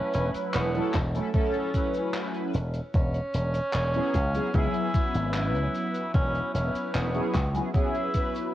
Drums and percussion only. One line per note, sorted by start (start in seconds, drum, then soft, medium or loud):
0.14 closed hi-hat medium
0.14 cabasa medium
0.34 closed hi-hat medium
0.34 cabasa medium
0.54 clap loud
0.54 closed hi-hat medium
0.54 cabasa soft
0.75 closed hi-hat soft
0.94 kick medium
0.94 clap medium
0.94 closed hi-hat medium
0.94 cabasa medium
1.15 closed hi-hat medium
1.15 cabasa medium
1.34 kick loud
1.34 closed hi-hat medium
1.34 cabasa soft
1.54 closed hi-hat soft
1.74 kick medium
1.74 closed hi-hat loud
1.74 cabasa medium
1.94 closed hi-hat medium
1.94 cabasa medium
2.14 clap loud
2.14 closed hi-hat medium
2.14 cabasa soft
2.34 closed hi-hat soft
2.54 closed hi-hat loud
2.54 cabasa medium
2.74 closed hi-hat medium
2.74 cabasa medium
2.94 kick loud
2.94 closed hi-hat medium
2.94 cabasa medium
3.14 closed hi-hat soft
3.34 closed hi-hat loud
3.34 cabasa medium
3.54 closed hi-hat medium
3.54 cabasa medium
3.73 clap loud
3.73 closed hi-hat medium
3.73 cabasa soft
3.94 closed hi-hat soft
4.14 kick medium
4.14 closed hi-hat loud
4.14 cabasa medium
4.35 closed hi-hat medium
4.35 cabasa medium
4.54 kick loud
4.54 closed hi-hat medium
4.54 cabasa soft
4.74 closed hi-hat medium
4.94 kick loud
4.94 closed hi-hat medium
4.94 cabasa medium
5.14 closed hi-hat medium
5.14 cabasa medium
5.34 clap loud
5.34 closed hi-hat medium
5.34 cabasa soft
5.55 closed hi-hat soft
5.75 closed hi-hat medium
5.75 cabasa medium
5.95 closed hi-hat medium
5.95 cabasa soft
6.14 kick loud
6.14 closed hi-hat medium
6.14 cabasa soft
6.35 closed hi-hat soft
6.55 closed hi-hat loud
6.55 cabasa medium
6.75 closed hi-hat medium
6.75 cabasa medium
6.95 clap loud
6.95 closed hi-hat medium
6.95 cabasa medium
7.14 closed hi-hat soft
7.34 kick medium
7.34 clap medium
7.34 closed hi-hat loud
7.34 cabasa medium
7.55 closed hi-hat medium
7.55 cabasa medium
7.74 kick loud
7.74 closed hi-hat medium
7.74 cabasa medium
7.95 closed hi-hat soft
8.14 kick medium
8.14 closed hi-hat loud
8.14 cabasa medium
8.35 closed hi-hat medium
8.35 cabasa medium